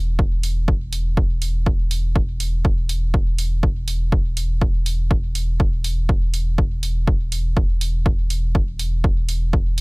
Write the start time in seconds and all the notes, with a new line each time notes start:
Already playing: E1
0.19 kick
0.43 open hi-hat
0.68 kick
0.93 open hi-hat
1.17 kick
1.42 open hi-hat
1.66 kick
1.91 open hi-hat
2.16 kick
2.40 open hi-hat
2.65 kick
2.89 open hi-hat
3.14 kick
3.39 open hi-hat
3.63 kick
3.88 open hi-hat
4.12 kick
4.37 open hi-hat
4.61 kick
4.86 open hi-hat
5.11 kick
5.35 open hi-hat
5.60 kick
5.84 open hi-hat
6.09 kick
6.34 open hi-hat
6.58 kick
6.83 open hi-hat
7.07 kick
7.32 open hi-hat
7.57 E1, kick
7.81 open hi-hat
8.06 kick
8.30 open hi-hat
8.55 kick
8.79 open hi-hat
9.04 kick
9.29 open hi-hat
9.53 kick